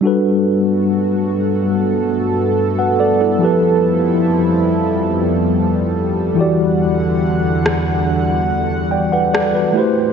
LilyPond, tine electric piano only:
\new Staff \with { instrumentName = "Tine electric piano" } { \time 4/4 \key g \major \tempo 4 = 71 << { r2. r16 <b' fis''>16 <a' d''>16 <e' a'>16~ | <e' a'>16 r2. r8. | r2 r8 <d'' g''>16 <b' fis''>16 <a' d''>16 <fis' b'>8 r16 | } \\ { <g d' fis' a' b'>1 | <f e' g' a' b'>2.~ <f e' g' a' b'>8 <e e' fis' g' d''>8~ | <e e' fis' g' d''>2.~ <e e' fis' g' d''>8 <a e' g' b' c''>8 | } >> }